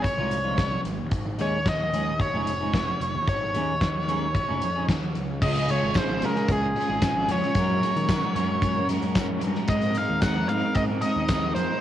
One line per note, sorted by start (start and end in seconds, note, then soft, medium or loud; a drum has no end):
0.02 0.80 C#5 medium
0.02 muted clean electric guitar stroke soft
0.02 kick medium
0.02 closed hi-hat medium
0.17 0.77 C2 medium
0.17 0.35 F3 medium
0.17 0.35 G#3 medium
0.17 0.35 D#4 medium
0.17 0.35 F4 medium
0.31 closed hi-hat medium
0.44 0.62 F3 medium
0.44 0.62 G#3 medium
0.44 0.62 D#4 medium
0.44 0.61 F4 medium
0.58 kick loud
0.58 snare medium
0.58 closed hi-hat medium
0.71 muted clean electric guitar stroke medium
0.84 1.00 G#1 medium
0.84 closed hi-hat medium
0.98 1.10 D#2 medium
1.11 1.36 G#1 medium
1.11 kick loud
1.11 closed hi-hat medium
1.26 muted clean electric guitar stroke soft
1.38 2.23 D#2 medium
1.38 1.56 G#3 medium
1.38 1.56 C#4 medium
1.38 1.56 D#4 medium
1.38 1.56 G#4 medium
1.38 1.68 C#5 medium
1.38 closed hi-hat medium
1.66 2.21 D#5 medium
1.66 muted clean electric guitar stroke soft
1.66 kick loud
1.66 snare medium
1.66 closed hi-hat medium
1.93 2.10 G#3 medium
1.93 2.10 C#4 medium
1.93 2.11 D#4 medium
1.93 2.11 G#4 medium
1.93 closed hi-hat medium
2.20 3.28 C#5 medium
2.20 muted clean electric guitar stroke soft
2.20 kick medium
2.20 closed hi-hat medium
2.33 2.93 F1 medium
2.33 2.51 G#3 medium
2.33 2.51 C#4 medium
2.33 2.51 D#4 medium
2.33 2.51 G#4 medium
2.47 closed hi-hat medium
2.60 2.78 G#3 medium
2.60 2.78 C#4 medium
2.60 2.78 D#4 medium
2.60 2.78 G#4 medium
2.74 kick loud
2.74 snare loud
2.74 closed hi-hat medium
2.88 muted clean electric guitar stroke medium
3.01 3.17 F1 medium
3.01 closed hi-hat medium
3.15 3.26 D#2 medium
3.27 3.51 G#1 medium
3.27 4.85 C#5 medium
3.27 kick loud
3.27 closed hi-hat medium
3.41 muted clean electric guitar stroke soft
3.54 4.38 D#2 medium
3.54 3.72 G#3 medium
3.54 3.71 C#4 medium
3.54 3.72 D#4 medium
3.54 3.72 G#4 medium
3.54 closed hi-hat medium
3.81 muted clean electric guitar stroke soft
3.81 kick loud
3.81 snare loud
3.81 closed hi-hat medium
4.08 4.25 G#3 medium
4.08 4.26 C#4 medium
4.08 4.26 D#4 medium
4.08 4.26 G#4 medium
4.08 closed hi-hat medium
4.35 muted clean electric guitar stroke soft
4.35 kick medium
4.35 closed hi-hat medium
4.48 4.61 F1 medium
4.48 4.66 G#3 medium
4.48 4.66 C#4 medium
4.48 4.66 D#4 medium
4.48 4.66 G#4 medium
4.62 4.87 F2 medium
4.62 closed hi-hat medium
4.76 4.93 G#3 medium
4.76 4.93 C#4 medium
4.76 4.93 D#4 medium
4.76 4.93 G#4 medium
4.88 5.13 D#2 medium
4.88 kick medium
4.88 snare loud
4.88 closed hi-hat medium
5.03 muted clean electric guitar stroke soft
5.15 5.40 C#2 medium
5.15 closed hi-hat soft
5.42 5.78 C#2 loud
5.42 5.94 C#3 medium
5.42 5.68 G#3 medium
5.42 5.69 C#4 medium
5.42 5.69 F4 loud
5.42 5.70 G#4 loud
5.42 5.70 D#5 loud
5.42 kick loud
5.42 crash loud
5.56 closed hi-hat soft
5.68 5.95 G#3 medium
5.68 5.95 C#4 medium
5.68 5.96 F4 medium
5.68 5.97 G#4 medium
5.68 5.97 C#5 medium
5.68 closed hi-hat medium
5.83 6.24 G#1 medium
5.94 6.35 C#3 medium
5.94 6.20 G#3 medium
5.94 6.09 C#4 loud
5.94 6.08 F4 loud
5.94 6.08 G#4 loud
5.94 6.24 C5 medium
5.94 kick loud
5.94 snare loud
5.94 closed hi-hat medium
5.94 tambourine medium
6.08 6.21 C#4 medium
6.08 6.21 F4 medium
6.08 6.23 G#4 medium
6.20 6.34 C#3 medium
6.20 6.75 G#3 medium
6.20 6.35 C#4 medium
6.20 6.34 F4 medium
6.20 6.34 G#4 medium
6.20 closed hi-hat medium
6.26 6.52 A#4 loud
6.34 6.62 C#4 medium
6.34 6.61 F4 medium
6.34 6.60 G#4 medium
6.34 snare soft
6.49 6.73 C#2 medium
6.49 7.33 G#4 medium
6.49 kick loud
6.49 closed hi-hat medium
6.61 6.75 C#4 soft
6.61 6.76 F4 medium
6.61 6.77 G#4 medium
6.75 7.01 G#3 medium
6.75 6.89 C#4 medium
6.75 6.88 F4 medium
6.75 6.88 G#4 medium
6.75 closed hi-hat medium
6.88 7.25 G#1 medium
6.88 7.01 C#4 medium
6.88 7.02 F4 medium
6.88 7.03 G#4 medium
7.01 7.54 C#3 medium
7.01 7.29 G#3 medium
7.01 7.28 C#4 medium
7.01 7.29 F4 medium
7.01 7.31 G#4 loud
7.01 kick loud
7.01 snare loud
7.01 closed hi-hat medium
7.01 tambourine loud
7.29 7.41 F2 medium
7.29 7.56 G#3 medium
7.29 7.44 C#4 medium
7.29 7.42 F4 medium
7.29 7.42 G#4 medium
7.29 8.87 C#5 medium
7.29 closed hi-hat medium
7.42 7.55 C#4 medium
7.42 7.55 F4 medium
7.42 7.57 G#4 medium
7.42 snare soft
7.55 7.79 F#2 medium
7.55 8.08 F#3 medium
7.55 7.82 G#3 medium
7.55 7.82 C#4 loud
7.55 7.83 F#4 medium
7.55 7.85 A#4 loud
7.55 kick loud
7.55 closed hi-hat medium
7.83 8.10 G#3 medium
7.83 8.09 C#4 medium
7.83 8.10 F#4 medium
7.83 8.11 A#4 medium
7.83 closed hi-hat medium
7.96 8.20 D#3 medium
7.96 closed hi-hat soft
8.09 8.49 F#3 medium
8.09 8.35 G#3 medium
8.09 8.24 C#4 medium
8.09 8.22 F#4 medium
8.09 8.22 A#4 loud
8.09 kick loud
8.09 snare loud
8.09 closed hi-hat loud
8.09 tambourine medium
8.22 8.35 C#4 medium
8.22 8.36 F#4 medium
8.22 8.37 A#4 medium
8.35 8.60 F#2 medium
8.35 8.80 G#3 medium
8.35 8.51 C#4 medium
8.35 8.50 F#4 medium
8.35 8.49 A#4 medium
8.35 closed hi-hat medium
8.49 8.78 C#4 medium
8.49 8.77 F#4 medium
8.49 8.76 A#4 medium
8.62 8.98 F#2 medium
8.62 kick loud
8.62 closed hi-hat loud
8.77 8.89 C#4 medium
8.77 8.90 F#4 medium
8.77 8.91 A#4 medium
8.89 9.16 G#3 medium
8.89 9.05 C#4 medium
8.89 9.04 F#4 medium
8.89 9.03 A#4 medium
8.89 closed hi-hat medium
9.02 9.38 F#2 medium
9.02 9.17 C#4 medium
9.02 9.17 F#4 medium
9.02 9.19 A#4 medium
9.02 closed hi-hat soft
9.15 9.68 F#3 loud
9.15 9.42 G#3 medium
9.15 9.43 C#4 medium
9.15 9.44 F#4 loud
9.15 9.45 A#4 loud
9.15 kick loud
9.15 snare loud
9.15 closed hi-hat loud
9.15 tambourine medium
9.41 9.54 G2 medium
9.41 9.68 G#3 medium
9.41 9.57 C#4 medium
9.41 9.56 F#4 medium
9.41 closed hi-hat medium
9.46 9.55 A#4 medium
9.55 9.69 C#4 medium
9.55 9.68 F#4 medium
9.55 9.71 A#4 medium
9.55 snare soft
9.68 10.04 G#2 medium
9.68 9.96 G#3 medium
9.68 9.97 C4 medium
9.68 9.98 D#4 loud
9.68 9.99 A#4 loud
9.68 9.97 D#5 loud
9.68 kick loud
9.68 closed hi-hat loud
9.82 closed hi-hat soft
9.95 10.22 G#3 medium
9.95 10.22 C4 medium
9.95 10.22 F5 medium
9.95 closed hi-hat medium
9.99 10.23 D#4 medium
9.99 10.24 A#4 medium
10.10 10.48 D#2 loud
10.22 10.49 G#3 medium
10.22 10.36 C4 medium
10.22 10.35 D#4 loud
10.22 10.35 A#4 medium
10.22 10.48 F#5 loud
10.22 kick loud
10.22 snare loud
10.22 closed hi-hat medium
10.22 tambourine medium
10.35 10.49 C4 medium
10.35 10.50 D#4 medium
10.35 10.51 A#4 medium
10.48 10.61 G#2 medium
10.48 10.92 G#3 medium
10.48 10.65 C4 medium
10.48 10.64 D#4 medium
10.48 10.62 A#4 medium
10.48 10.77 F5 loud
10.48 closed hi-hat medium
10.63 10.91 C4 medium
10.63 10.90 D#4 medium
10.63 10.88 A#4 medium
10.75 11.00 G#2 medium
10.75 10.82 D#5 loud
10.75 kick loud
10.75 closed hi-hat medium
10.89 11.02 C4 medium
10.89 11.03 D#4 medium
10.89 11.04 A#4 medium
11.02 11.29 G#3 medium
11.02 11.17 C4 medium
11.02 11.17 D#4 medium
11.02 11.15 A#4 medium
11.02 11.52 D#5 medium
11.02 closed hi-hat medium
11.16 11.51 D#2 medium
11.16 11.28 C4 medium
11.16 11.29 D#4 medium
11.16 11.30 A#4 medium
11.28 11.55 G#3 medium
11.28 11.55 C4 medium
11.28 11.57 D#4 loud
11.28 11.57 A#4 medium
11.28 kick loud
11.28 snare loud
11.28 closed hi-hat medium
11.28 tambourine medium
11.55 11.68 F2 loud
11.55 11.81 G#3 medium
11.55 11.71 C4 medium
11.55 11.70 D#4 medium
11.55 11.68 A#4 medium
11.55 11.81 C5 medium
11.55 closed hi-hat medium
11.70 11.81 C4 medium
11.70 11.81 D#4 medium
11.70 11.81 A#4 medium